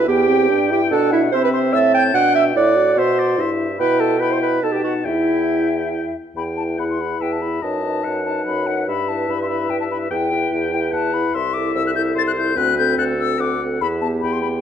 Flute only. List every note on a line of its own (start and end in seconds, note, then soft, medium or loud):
0.08 0.70 G5 medium
0.71 0.91 G5 medium
0.92 1.13 A5 medium
1.12 1.32 E5 medium
1.33 1.42 C6 medium
1.43 1.52 B5 medium
1.53 1.59 C6 medium
1.73 1.79 E6 medium
1.95 2.16 G6 medium
2.15 2.35 F#6 medium
2.38 2.44 E6 medium
2.57 2.96 D6 medium
2.98 3.51 C6 medium
3.79 4.01 B5 medium
4.00 4.20 A5 medium
4.21 4.34 B5 medium
4.33 4.41 C6 medium
4.42 4.62 B5 medium
4.63 4.73 A5 medium
4.75 4.84 G5 medium
4.85 5.07 F#5 medium
5.06 6.15 E5 medium
6.37 6.43 B5 medium
6.57 6.63 A5 medium
6.79 6.84 B5 medium
6.91 7.02 C6 soft
7.01 7.23 B5 medium
7.22 7.34 G5 medium
7.33 7.43 A5 soft
7.42 7.64 B5 medium
7.63 8.24 A5 medium
8.25 8.46 A5 soft
8.47 8.68 B5 medium
8.67 8.88 F#5 medium
8.88 9.10 B5 medium
9.09 9.32 A5 medium
9.30 9.40 B5 medium
9.42 9.49 C6 medium
9.49 9.71 B5 medium
9.70 9.80 G5 medium
9.80 9.85 A5 medium
9.91 9.97 B5 medium
10.12 10.51 G5 medium
10.74 10.80 G5 medium
10.93 11.15 A5 medium
11.14 11.36 B5 medium
11.34 11.55 C6 medium
11.54 11.74 D6 medium
11.75 11.85 E6 medium
11.87 11.91 F#6 medium
11.96 12.02 G6 medium
12.18 12.22 A6 medium
12.28 12.32 F#6 medium
12.38 12.59 G6 medium
12.58 12.78 F#6 loud
12.78 12.98 G6 medium
12.98 13.04 F#6 medium
13.19 13.42 E6 medium
13.41 13.61 D6 medium
13.81 13.87 B5 medium
14.01 14.07 A5 medium
14.21 14.34 B5 medium
14.32 14.41 C6 medium
14.42 14.48 B5 medium